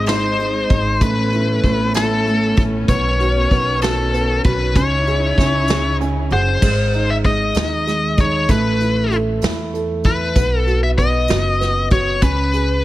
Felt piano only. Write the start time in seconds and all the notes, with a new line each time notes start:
Already playing: G#3 D#4
0.07 D#4
0.38 G#3
0.70 D#4
1.01 A3
1.33 E4
1.64 A3
1.95 E4
2.26 A3
2.57 E4
2.88 B3
3.20 F#4
3.52 B3
3.83 F#4
4.13 B3
4.45 F#4
4.76 C#4
5.07 G#4
5.39 C#4
5.69 G#4
6.00 C#4 G#5
6.32 G#4 F#5
6.63 G#3
6.94 D#4
7.25 G#3
7.56 D#4
7.87 G#3
8.18 D#4
8.49 A3
8.81 E4
9.12 A4
9.43 E4
9.74 A4
10.04 E4
10.36 B3
10.67 F#4
10.98 B3
11.29 F#4
11.61 B3
11.91 F#4
12.22 C#4
12.54 G#4